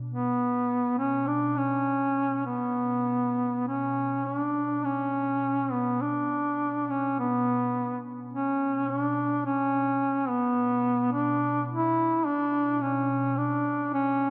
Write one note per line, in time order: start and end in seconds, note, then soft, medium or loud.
0.00 4.86 B2 soft
0.11 0.93 B3 medium
0.98 1.29 C#4 medium
1.27 1.59 D4 medium
1.57 2.45 C#4 medium
2.46 3.63 B3 medium
3.67 4.26 C#4 medium
4.26 4.37 C#4 medium
4.37 4.86 D4 medium
4.84 14.30 B2 medium
4.84 5.74 C#4 medium
5.72 6.02 B3 medium
6.01 6.91 D4 medium
6.89 7.18 C#4 medium
7.19 8.02 B3 medium
8.33 8.91 C#4 medium
8.89 9.45 D4 medium
9.46 10.30 C#4 medium
10.29 11.12 B3 medium
11.13 11.65 D4 medium
11.71 12.27 E4 loud
12.26 12.83 D4 medium
12.81 13.39 C#4 medium
13.37 13.93 D4 medium
13.94 14.30 C#4 loud